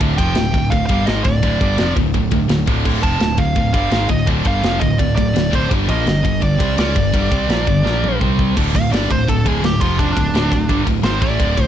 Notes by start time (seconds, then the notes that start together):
0.00 D1 D2 A2 D3, kick, ride
0.18 F1 F2 C3 F3 G5, kick, ride
0.35 D1 D2 A2, snare, ride
0.54 D1 D2 A2, kick, ride
0.70 D1 D2 A2 F5, kick, ride
0.86 G1 G2 D3 G3 F5, kick, ride
1.06 G#1 G#2 D#3 G#3 D#5, snare, ride
1.24 D1 D2 A2 D5, kick, ride
1.42 D1 D2 A2 D3, kick, ride
1.60 G1 G2 D3 G3, kick, ride
1.77 F1 F2 C3 F3, snare, ride
1.96 D1 D2 A2, kick, ride
2.14 D1 D2 A2, kick, ride
2.31 D1 D2 A2, kick, ride
2.48 D1 D2 A2, snare, ride
2.66 D1 D2 A2 D3, kick, ride
2.84 D1 D2 A2 D3, kick, crash
3.02 F1 F2 C3 F3 A5, kick, ride
3.19 D1 D2 A2, snare, ride
3.37 D1 D2 A2 F5, kick, ride
3.56 D1 D2 A2, kick, ride
3.73 G1 G2 D3 G3 F5, kick, ride
3.91 G#1 G#2 D#3 G#3, snare, ride
4.09 D1 D2 A2 D#5, kick, ride
4.27 D1 D2 A2 D3, kick, ride
4.44 G1 G2 D3 G3 F5, kick, ride
4.62 F1 F2 C3 F3, snare, ride
4.80 D1 D2 A2 D#5, kick, ride
4.98 D1 D2 A2 D5, kick, ride
5.16 D1 D2 A2 D5, kick, ride
5.35 D1 D2 A2, snare, ride
5.50 D1 D2 A2 D3, kick, ride
5.55 C5
5.68 G1 G2 D3 G3, kick, ride
5.86 A#1 A#2 F3 A#3, kick, ride
5.90 D#5
6.05 G1 G2 D3, snare, ride
6.23 G1 G2 D3, kick, ride
6.40 G1 G2 D3 D5, kick, ride
6.57 C2 C3 G3 C4, kick, ride
6.61 G3
6.76 C#2 C#3 G#3 C#4 D5, snare, ride
6.95 G1 G2 D3, kick, ride
7.12 G1 G2 D3 G3, kick, ride
7.30 C2 C3 G3 C4, kick, ride
7.48 A#1 A#2 F3 A#3, snare, ride
7.67 G1 G2 D3, kick, ride
7.83 A#1 A#2 F3 A#3, snare
8.04 mid tom
8.20 C2 C3 G3 C4, kick
8.39 kick
8.55 D1 D2 A2 D3, kick, crash
8.72 D1 D2 A2 F5, kick, ride
8.90 G1 G2 D3 G3 D5, ride
8.94 snare
9.10 D1 D2 A2 C5, kick, ride
9.27 D1 D2 A2 A4, kick, ride
9.45 D1 D2 A2 D3 G#4, kick, ride
9.62 D1 D2 A2 G4, snare, ride
9.80 F1 F2 C3 F3 F4, kick, ride
9.98 D4, kick, ride
10.12 D2 D4
10.16 D1 A2, kick, ride
10.32 D1 D2 A2 D3, snare, ride
10.51 D1 D2 A2, kick, ride
10.69 G1 G2 D3 G3, kick, ride
10.86 D1 D2 A2, kick, ride
11.02 G#1 G#2 D#3 G#3 C5, snare, ride
11.20 A1 A2 E3 A3 D5, kick, ride
11.38 D1 D2 A2 D3, kick, ride
11.57 D1 D2 A2, kick, ride
11.63 C5